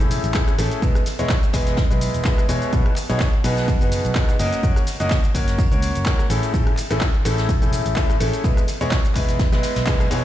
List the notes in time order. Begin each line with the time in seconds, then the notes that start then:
0.00 E1 A2 A3 C#4 E4 G#4 A4, closed hi-hat, shaker
0.11 open hi-hat, ride, shaker
0.24 A1, closed hi-hat, shaker
0.34 A2 A3 C#4 E4 G#4 A4, kick, snare, clap, closed hi-hat, ride, shaker
0.48 cross-stick, closed hi-hat, shaker
0.58 A1 A3 C#4 E4 G#4 A4, open hi-hat, ride, shaker
0.71 closed hi-hat, shaker
0.82 E1 G#3 B3 E4 G#4 B4, kick, closed hi-hat, ride, shaker
0.95 cross-stick, closed hi-hat, shaker
1.06 snare, open hi-hat, ride, shaker
1.19 E1 G#3 B3 E4 G#4 C#5, closed hi-hat, shaker
1.29 kick, snare, clap, closed hi-hat, ride, shaker
1.43 closed hi-hat, shaker
1.53 E1 G#3 B3 E4 G#4 B4, kick, snare, open hi-hat, ride, shaker
1.67 snare, closed hi-hat, shaker
1.77 kick, snare, closed hi-hat, ride, shaker
1.91 B1 G#3 B3 E4 G#4 B4, closed hi-hat, shaker
2.01 open hi-hat, ride, shaker
2.14 E1, closed hi-hat, shaker
2.25 G#3 B3 E4 G#4 B4, kick, snare, clap, closed hi-hat, ride, shaker
2.38 cross-stick, closed hi-hat, shaker
2.48 E1 B2 G#3 B3 E4 G#4 C#5, open hi-hat, ride, shaker
2.62 closed hi-hat, shaker
2.72 B1 B2 B3 D#4 F#4 G#4 B4, kick, closed hi-hat, ride, shaker
2.86 cross-stick, closed hi-hat, ride
2.96 clap, open hi-hat, ride, shaker
3.10 B1 B2 B3 D#4 F#4 G#4 C#5, closed hi-hat, shaker
3.20 kick, snare, clap, closed hi-hat, ride, shaker
3.33 closed hi-hat
3.44 B1 B2 B3 D#4 F#4 G#4 B4, open hi-hat, shaker
3.57 snare, closed hi-hat, shaker
3.68 kick, closed hi-hat, ride, shaker
3.81 F#1 B2 B3 D#4 F#4 G#4 B4, closed hi-hat, shaker
3.92 open hi-hat, ride, shaker
4.05 B1, closed hi-hat, shaker
4.15 B3 D#4 F#4 G#4 B4, kick, snare, clap, closed hi-hat, ride, shaker
4.29 cross-stick, closed hi-hat, shaker
4.39 F#1 A#3 C#4 F#4 A#4 D#5, open hi-hat, ride, shaker
4.52 closed hi-hat, shaker
4.63 F#1 A#3 A#4, kick, closed hi-hat, ride, shaker
4.76 cross-stick, closed hi-hat, shaker
4.87 snare, open hi-hat, ride, shaker
5.00 F#1 A#3 C#4 F#4 A#4 D#5, closed hi-hat, shaker
5.10 kick, snare, clap, closed hi-hat, ride, shaker
5.24 closed hi-hat, shaker
5.35 F#1 A#3 C#4 F#4 A#4 C#5, kick, open hi-hat, ride, shaker
5.48 snare, closed hi-hat, shaker
5.59 kick, closed hi-hat, ride, shaker
5.71 C#2 A#3 C#4 F#4 A#4 C#5, closed hi-hat, shaker
5.82 open hi-hat, ride, shaker
5.95 F#1, closed hi-hat, shaker
6.06 A#3 C#4 F#4 A#4 C#5, kick, snare, clap, closed hi-hat, ride, shaker
6.19 cross-stick, closed hi-hat, shaker
6.30 A1 A2 A3 C#4 E4 G#4 A4, open hi-hat, ride, shaker
6.43 closed hi-hat, shaker
6.54 A1 A2 E4, kick, closed hi-hat, ride, shaker
6.67 cross-stick, closed hi-hat, ride
6.77 clap, open hi-hat, ride, shaker
6.91 A1 A2 A3 C#4 E4 G#4 A4, closed hi-hat, shaker
7.01 kick, snare, clap, closed hi-hat, ride, shaker
7.14 closed hi-hat
7.25 A1 A2 A3 C#4 E4 G#4 A4, open hi-hat, shaker
7.38 snare, closed hi-hat, shaker
7.49 kick, closed hi-hat, ride, shaker
7.62 E1 A2 A3 C#4 E4 G#4 A4, closed hi-hat, shaker
7.73 open hi-hat, ride, shaker
7.86 A1, closed hi-hat, shaker
7.96 A2 A3 C#4 E4 G#4 A4, kick, snare, clap, closed hi-hat, ride, shaker
8.10 cross-stick, closed hi-hat, shaker
8.20 A1 A3 C#4 E4 G#4 A4, open hi-hat, ride, shaker
8.33 closed hi-hat, shaker
8.44 E1 G#3 B3 E4 G#4 B4, kick, closed hi-hat, ride, shaker
8.57 cross-stick, closed hi-hat, shaker
8.68 snare, open hi-hat, ride, shaker
8.81 E1 G#3 B3 E4 G#4 C#5, closed hi-hat, shaker
8.91 kick, snare, clap, closed hi-hat, ride, shaker
9.05 closed hi-hat, shaker
9.15 E1 G#3 B3 E4 G#4 B4, kick, clap, open hi-hat, ride, shaker
9.29 snare, closed hi-hat, shaker
9.39 kick, snare, closed hi-hat, ride, shaker
9.52 B1 G#3 B3 E4 G#4 B4, snare, closed hi-hat, ride, shaker
9.63 snare, open hi-hat, ride, shaker
9.76 B1, snare, closed hi-hat, ride, shaker
9.86 G#3 B3 E4 G#4 B4, kick, snare, clap, closed hi-hat, ride, shaker
10.00 cross-stick, closed hi-hat, shaker
10.11 E1 B2 G#3 B3 E4 G#4 C#5, snare, open hi-hat, ride, shaker